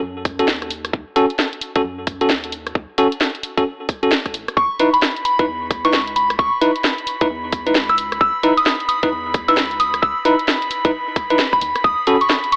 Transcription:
0.03 analog synth bass F#2
0.25 kick, cross-stick, open hi-hat
0.39 analog synth bass D#2, tine electric piano C#4 F#4 A4, closed hi-hat
0.48 snare
0.62 cross-stick, closed hi-hat
0.70 open hi-hat
0.85 cross-stick, closed hi-hat
0.93 analog synth bass D#2, kick
1.16 tine electric piano C#4 F#4 A4, open hi-hat
1.30 closed hi-hat
1.39 snare
1.53 closed hi-hat
1.61 open hi-hat
1.76 tine electric piano C#4 F#4 A4, kick, closed hi-hat
1.84 analog synth bass F#2
2.07 kick, cross-stick, open hi-hat
2.21 analog synth bass D#2, tine electric piano C#4 F#4 A4, closed hi-hat
2.30 snare
2.44 closed hi-hat
2.52 open hi-hat
2.67 cross-stick, closed hi-hat
2.75 analog synth bass D#2, kick
2.98 tine electric piano C#4 F#4 A4, open hi-hat
3.12 closed hi-hat
3.21 snare
3.35 closed hi-hat
3.43 open hi-hat
3.58 tine electric piano C#4 F#4 A4, kick, closed hi-hat
3.89 kick, cross-stick, open hi-hat
4.03 tine electric piano C#4 F#4 A4, closed hi-hat
4.12 snare
4.26 kick, cross-stick, closed hi-hat
4.34 analog synth bass A1, open hi-hat
4.48 cross-stick, closed hi-hat
4.57 analog synth bass C#2, analog synth pad B5, synth bell C#6, kick
4.80 tine electric piano D#4 E4 B4, open hi-hat
4.93 synth bell B5, closed hi-hat
5.02 snare
5.16 closed hi-hat
5.25 synth bell B5, open hi-hat
5.39 tine electric piano D#4 E4 B4, kick, closed hi-hat
5.48 analog synth bass E2
5.71 kick, cross-stick, open hi-hat
5.85 analog synth bass C#2, tine electric piano D#4 E4 B4, synth bell C#6, closed hi-hat
5.93 snare
6.07 closed hi-hat
6.16 synth bell B5, open hi-hat
6.30 cross-stick, closed hi-hat
6.39 analog synth bass C#2, synth bell C#6, kick
6.62 tine electric piano D#4 E4 B4, open hi-hat
6.76 closed hi-hat
6.84 snare
6.98 closed hi-hat
7.07 open hi-hat
7.21 tine electric piano D#4 E4 B4, kick, closed hi-hat
7.30 analog synth bass E2
7.52 kick, cross-stick, open hi-hat
7.67 analog synth bass C#2, tine electric piano D#4 E4 B4, closed hi-hat
7.75 snare
7.89 synth bell E6, cross-stick, closed hi-hat
7.98 open hi-hat
8.12 cross-stick, closed hi-hat
8.21 analog synth bass C#2, synth bell E6, kick
8.43 tine electric piano D#4 E4 B4, open hi-hat
8.57 synth bell D#6, closed hi-hat
8.66 snare
8.80 closed hi-hat
8.89 synth bell D#6, open hi-hat
9.03 tine electric piano D#4 E4 B4, kick, closed hi-hat
9.12 analog synth bass E2
9.34 kick, cross-stick, open hi-hat
9.48 analog synth bass C#2, tine electric piano D#4 E4 B4, synth bell E6, closed hi-hat
9.57 snare
9.71 closed hi-hat
9.80 synth bell D#6, open hi-hat
9.94 cross-stick, closed hi-hat
10.02 analog synth bass C#2, synth bell E6, kick
10.25 tine electric piano D#4 E4 B4, open hi-hat
10.39 closed hi-hat
10.48 snare
10.62 closed hi-hat
10.71 open hi-hat
10.85 tine electric piano D#4 E4 B4, kick, closed hi-hat
11.16 kick, cross-stick, open hi-hat
11.30 tine electric piano D#4 E4 B4, closed hi-hat
11.39 snare
11.53 synth bell B5, kick, cross-stick, closed hi-hat
11.61 analog synth bass D#2, open hi-hat
11.76 cross-stick, closed hi-hat
11.84 analog synth bass D#2, synth bell D#6, kick
12.07 tine electric piano C#4 F#4 A4, open hi-hat
12.21 synth bell C#6, closed hi-hat
12.30 snare
12.44 closed hi-hat
12.52 synth bell C#6, open hi-hat

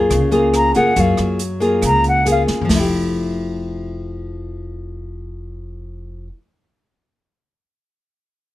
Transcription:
Already playing: upright bass F#2, nylon-string guitar A#3 F4 G#4
0.10 upright bass C#2, nylon-string guitar C#3, kick, cross-stick, closed hi-hat
0.31 nylon-string guitar A#3 F4 G#4, closed hi-hat
0.54 flute A#5, cross-stick, closed hi-hat
0.75 upright bass F#2, nylon-string guitar A#3 F4 G#4, flute F#5, closed hi-hat
0.96 upright bass F#2, nylon-string guitar F#3 A#3 F4 G#4, kick, closed hi-hat
1.00 flute F5
1.17 upright bass F#2, cross-stick, closed hi-hat
1.39 closed hi-hat
1.60 nylon-string guitar A#3 F4 G#4, closed hi-hat
1.82 upright bass C#2, nylon-string guitar C#3, kick, cross-stick, closed hi-hat
1.86 flute A#5
2.04 closed hi-hat
2.08 flute F#5
2.25 nylon-string guitar A#3 F4 G#4, closed hi-hat
2.31 flute F5
2.48 upright bass F#2, snare
2.62 nylon-string guitar F3, floor tom
2.69 upright bass F1, nylon-string guitar A3, kick, snare, open hi-hat
2.75 nylon-string guitar E4
2.80 nylon-string guitar G4

